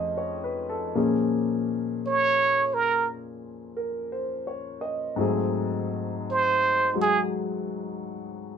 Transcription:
0.00 0.93 F2 medium
0.00 0.94 F3 soft
0.00 0.95 A3 soft
0.00 0.95 C#4 medium
0.00 0.98 D#4 soft
0.00 0.95 G#4 medium
0.00 0.40 D#5 soft
0.17 0.63 C#5 soft
0.44 0.76 B4 soft
0.69 1.06 A4 medium
0.95 5.18 A#2 medium
0.95 5.19 F3 soft
0.95 5.19 A#3 soft
0.95 5.19 C#4 soft
0.95 5.19 G#4 medium
2.07 2.76 C#5 loud
2.74 3.08 A#4 medium
3.77 4.32 A#4 soft
4.12 4.80 C5 medium
4.47 5.03 C#5 soft
4.81 5.38 D#5 medium
5.16 8.58 G#2 medium
5.16 6.92 F#3 medium
5.16 8.58 A3 soft
5.16 8.58 C4 soft
5.20 8.58 G#4 medium
6.31 6.95 C5 loud
6.94 8.58 F#3 soft
6.94 8.58 G#3 soft
6.94 8.58 F#4 soft
7.01 7.21 G#4 loud

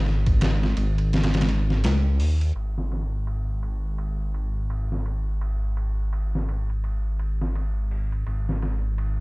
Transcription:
0.00 0.74 G#1 loud
0.06 snare soft
0.26 kick medium
0.26 ride medium
0.41 snare loud
0.41 ride medium
0.63 snare medium
0.77 1.86 G#1 loud
0.77 ride medium
0.98 ride soft
1.13 snare medium
1.13 ride medium
1.23 snare medium
1.23 ride medium
1.34 snare medium
1.34 ride medium
1.41 snare medium
1.41 ride medium
1.49 ride medium
1.70 snare soft
1.84 2.21 C#2 loud
1.84 snare loud
1.84 ride medium
2.20 2.52 D#2 loud
2.20 open hi-hat medium
2.41 ride soft
2.55 8.24 G#1 medium
2.55 ride medium
2.78 snare soft
2.92 snare soft
2.92 ride medium
3.27 ride medium
3.63 ride medium
3.98 ride medium
4.34 ride medium
4.70 ride medium
4.92 snare soft
5.06 ride medium
5.41 ride medium
5.77 ride medium
6.13 ride medium
6.35 snare soft
6.49 ride medium
6.70 ride soft
6.84 ride medium
7.19 ride medium
7.41 snare soft
7.55 ride medium
7.91 open hi-hat medium
8.12 ride soft
8.27 9.20 G#1 medium
8.27 ride medium
8.49 snare soft
8.62 snare soft
8.62 ride medium
8.98 ride medium

